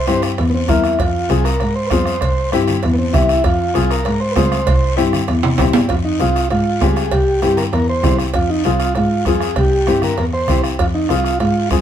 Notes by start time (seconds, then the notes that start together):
0.07 G2 C4 E4 G4 C5, bombo rim, high conga, short guiro
0.22 bombo rim, short guiro
0.38 E2, bombo rim, cowbell, high conga, long guiro
0.50 B3
0.55 C4
0.68 E2 C4 E4 A#4, bombo low, bombo rim, high conga, low conga, short guiro
0.84 bombo rim, short guiro
0.99 F2 F4, bombo low, bombo rim, cowbell, long guiro
1.29 C2 C4 F4 G#4, bombo rim, high conga, short guiro
1.44 A#4, bombo rim, short guiro
1.60 G#2, bombo rim, cowbell, high conga, long guiro
1.75 C5
1.87 B4, bombo rim
1.91 F2 C4 F4 G#4 C5, bombo low, high conga, low timbale, short guiro
2.06 bombo rim, short guiro
2.21 C2, bombo low, bombo rim, cowbell, high conga, long guiro
2.52 G2 C4 E4 G4, bombo rim, high conga, short guiro
2.68 bombo rim, low conga, short guiro
2.83 E2, bombo rim, cowbell, high conga, long guiro
2.93 B3
2.98 C4
3.13 C2 C4 E4 G4, bombo low, bombo rim, high conga, low conga, short guiro
3.29 bombo rim, short guiro
3.44 F2 F4, bombo low, bombo rim, cowbell, high conga, long guiro
3.74 C2 C4 F4 G#4, bombo rim, high conga, short guiro
3.91 A#4, bombo rim, short guiro
4.05 G#2, bombo rim, cowbell, long guiro
4.20 C5
4.31 B4
4.36 C#2 C4 F4 G#4 C5, bombo low, bombo rim, high conga, low timbale, short guiro
4.52 bombo rim, short guiro
4.67 C2, bombo low, bombo rim, cowbell, high conga, long guiro
4.97 G2 C4 E4 G4, bombo rim, high conga, short guiro
5.13 bombo rim, low conga, short guiro
5.28 E2, bombo rim, cowbell, high conga, long guiro
5.43 C3, high timbale
5.58 A#2 C4 E4 G4, bombo low, bombo rim, high conga, low conga, high timbale, short guiro
5.73 G2, bombo rim, low timbale, short guiro
5.89 F2 F4, bombo low, bombo rim, cowbell, long guiro
6.05 D#4
6.19 C2 C4 F4 G#4, bombo rim, high conga, short guiro
6.36 bombo rim, short guiro
6.50 G#2 F4, bombo rim, cowbell, long guiro
6.81 C#2 C4 F4 G4 G#4, bombo low, bombo rim, high conga, low timbale, short guiro
6.96 bombo rim, short guiro
7.11 C2 G4, bombo low, bombo rim, cowbell, long guiro
7.42 G2 C4 E4 G4, bombo rim, high conga, short guiro
7.57 A#4, bombo rim, low conga, short guiro
7.73 E2 A#4, bombo rim, cowbell, high conga, long guiro
7.89 C5
8.03 C2 C4 E4 G4, bombo low, bombo rim, high conga, low conga, low timbale, short guiro
8.19 bombo rim, short guiro
8.34 F2 F4, bombo low, bombo rim, cowbell, high conga, long guiro
8.50 D#4
8.64 C2 C4 F4 G#4, bombo rim, high conga, short guiro
8.80 bombo rim, short guiro
8.95 G#2 F4, bombo rim, cowbell, high conga, long guiro
9.25 F2 C4 F4 G#4, bombo low, bombo rim, high conga, short guiro
9.41 bombo rim, short guiro
9.56 C2 G4, bombo low, bombo rim, cowbell, long guiro
9.87 G2 C4 E4 G4, bombo rim, high conga, short guiro
10.02 A#4, bombo rim, low conga, short guiro
10.18 E2 A#4, bombo rim, cowbell, high conga, long guiro
10.33 C5
10.48 C2 C4 E4 G4, bombo low, bombo rim, high conga, low conga, short guiro
10.64 bombo rim, short guiro
10.79 F2 F4, bombo low, bombo rim, cowbell, long guiro
10.94 D#4
11.09 C2 C4 F4 G#4, bombo rim, high conga, short guiro
11.24 bombo rim, short guiro
11.40 G#2 F4, bombo rim, cowbell, long guiro
11.71 F2 C4 F4 G#4, bombo low, bombo rim, high conga, short guiro